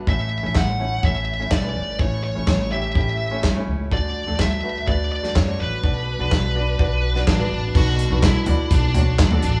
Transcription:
0.07 A1 A2 A3 C#4 E4 C#5 E5, kick
0.43 A1 A3 C#4 E4 C#5
0.55 A1 F#5, kick, snare, clap
0.80 A3 C#4 E4 C#5
1.03 A1 A3 C#4 E4 C#5 E5, kick
1.39 A3 C#4 E4 C#5
1.51 B1 D5, kick, snare, clap
1.63 A3 C#4 E4 B4
1.75 G1
1.99 A1 A2 A3 C#4 E4 C#5, kick
2.24 C#5
2.35 A1 A3 C#4 E4 C#5
2.47 A1 C#5, kick, snare, clap
2.71 A3 C#4 E4 G4 E5
2.95 A1 A3 C#4 E4 G4, kick
3.31 A3 C#4 E4 C#5
3.43 G1, kick, snare, clap
3.55 A3 C#4 E4 C#5
3.67 C#2
3.91 D2 D3 A3 D4 F#4 D5, kick
4.27 D2 A3 D4 F#4 A4
4.39 D2 E5, kick, snare, clap
4.63 A3 D4 F#4 B4
4.87 D2 A3 D4 F#4 B4 D5, kick
5.12 D5
5.23 A3 D4 F#4 D5, snare
5.36 F#2 C#5, kick, snare, clap
5.47 A3 D4 F#4 D5
5.59 A1 B4
5.83 B1 B2 B3 D4 F#4 D5, kick
6.19 B1 B3 D4 F#4 D5
6.31 B1, kick, snare, clap
6.55 B3 D4 F#4 D5
6.79 B1 B3 D4 F#4 D5, kick
7.15 B3 D4 F#4 D5, snare
7.27 A1 D4, kick, snare, clap
7.39 B3 D4 F#4 B4
7.51 A1
7.75 B1 B2 D4 F#4 B4, kick, crash
7.99 closed hi-hat
8.10 B1 D4 F#4 B4
8.23 E4, kick, snare, clap, closed hi-hat
8.46 D2 D4 F#4 D5, closed hi-hat, floor tom
8.71 B1 D4, kick, closed hi-hat
8.94 D4 F#4 C#5, closed hi-hat, floor tom
9.19 D2, kick, snare, clap, closed hi-hat
9.31 D4 F#4 A4, floor tom
9.42 A1 D4, closed hi-hat

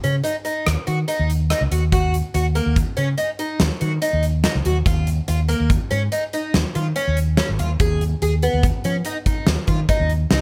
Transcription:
0.04 C#3 C#4, closed hi-hat
0.24 D#4, closed hi-hat
0.45 D#4, closed hi-hat
0.67 D#2, cross-stick, closed hi-hat
0.87 D#3 F#4, closed hi-hat
1.08 D#4, closed hi-hat
1.19 D#2
1.30 closed hi-hat
1.50 D#4, cross-stick, closed hi-hat
1.61 C#2
1.71 D#2 F#4, closed hi-hat
1.92 F#4, kick, closed hi-hat
2.14 closed hi-hat
2.34 D#2 F#4, closed hi-hat
2.55 A#3, closed hi-hat
2.66 D#2
2.76 kick, closed hi-hat
2.97 C#3 C#4, closed hi-hat
3.18 D#4, closed hi-hat
3.39 D#4, closed hi-hat
3.60 D#2, snare, closed hi-hat
3.81 D#3 F#4, closed hi-hat
4.02 D#4, closed hi-hat
4.13 D#2
4.23 closed hi-hat
4.44 D#4, snare, closed hi-hat
4.55 C#2
4.65 D#2 F#4, closed hi-hat
4.86 D#2 F4, kick, closed hi-hat
5.07 closed hi-hat
5.28 D#2 F4, closed hi-hat
5.48 A#3, closed hi-hat
5.60 D#2
5.70 kick, closed hi-hat
5.91 G#2 C#4, closed hi-hat
6.12 D#4, closed hi-hat
6.33 D#4, closed hi-hat
6.54 D#2, snare, closed hi-hat
6.75 D#3 F4, closed hi-hat
6.96 C#4, closed hi-hat
7.07 D#2
7.17 closed hi-hat
7.37 C#4, snare, closed hi-hat
7.49 G#1
7.59 D#2 F4, closed hi-hat
7.80 D#2 G#4, kick, closed hi-hat
8.01 closed hi-hat
8.22 D#2 G#4, closed hi-hat
8.43 B3, closed hi-hat
8.53 D#2
8.63 kick, closed hi-hat
8.84 F3 C#4, closed hi-hat
9.05 D#4, closed hi-hat
9.26 D#4, kick, closed hi-hat
9.47 D#2, snare, closed hi-hat
9.67 D#3 F4, kick, closed hi-hat
9.89 D#4, kick, closed hi-hat
10.00 D#2
10.10 closed hi-hat
10.31 C#2 D#4, snare, closed hi-hat

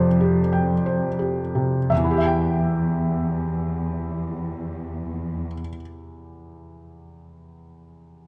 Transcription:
Already playing: F2 C3 G4 C5 D5
0.21 G4
0.53 G5
0.86 C5
1.19 G4
1.55 C3
1.90 E2 E5
1.97 E3
2.04 E4
2.11 G4
2.18 E5
2.25 G5

